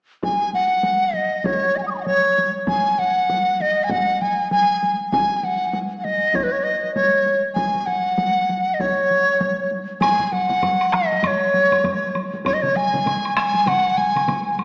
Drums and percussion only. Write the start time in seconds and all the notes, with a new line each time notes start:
0.23 taiko, taiko high
0.53 taiko high
0.83 taiko high
1.02 taiko high
1.13 taiko high
1.32 taiko high
1.44 taiko, taiko high
1.64 taiko high
1.76 taiko high
1.95 taiko high
2.06 taiko high
2.25 taiko high
2.38 taiko high
2.56 taiko high
2.67 taiko, taiko high
2.98 taiko high
3.18 taiko high
3.30 taiko high
3.48 taiko high
3.60 taiko high
3.80 taiko high
3.90 taiko, taiko high
4.09 taiko high
4.22 taiko high
4.40 taiko high
4.51 taiko high
4.70 taiko high
4.83 taiko high
5.01 taiko high
5.12 taiko, taiko high
5.43 taiko high
5.62 taiko high
5.73 taiko high
5.92 taiko high
6.05 taiko high
6.22 taiko high
6.34 taiko, taiko high
6.53 taiko high
6.83 taiko high
6.96 taiko high
7.14 taiko high
7.26 taiko high
7.56 taiko, taiko high
7.75 taiko high
7.87 taiko high
8.06 taiko high
8.18 taiko high
8.37 taiko high
8.49 taiko high
8.67 taiko high
8.80 taiko, taiko high
8.99 taiko high
9.11 taiko high
9.29 taiko high
9.41 taiko high
9.59 taiko high
9.71 taiko high
9.89 taiko high
10.01 taiko, taiko high, high woodblock
10.19 taiko low-mid
10.32 taiko high
10.49 taiko low-mid, taiko high
10.62 taiko low-mid, taiko high, high woodblock
10.81 high woodblock
10.92 taiko rim, taiko high, high woodblock
11.12 taiko high
11.23 taiko low-mid, taiko high, high woodblock
11.54 taiko high
11.72 taiko low-mid, taiko high, high woodblock
11.84 taiko low-mid, taiko high, high woodblock
12.15 taiko high, high woodblock
12.34 taiko high
12.45 taiko, taiko high, high woodblock
12.63 taiko mid
12.76 taiko high
12.94 taiko mid, taiko high
13.06 taiko, taiko mid, taiko high, high woodblock
13.25 high woodblock
13.37 taiko rim, taiko high, high woodblock
13.55 taiko high
13.67 taiko mid, taiko high, high woodblock
13.98 taiko high
14.16 taiko mid, taiko high, high woodblock
14.28 taiko mid, taiko high, high woodblock
14.59 taiko high, high woodblock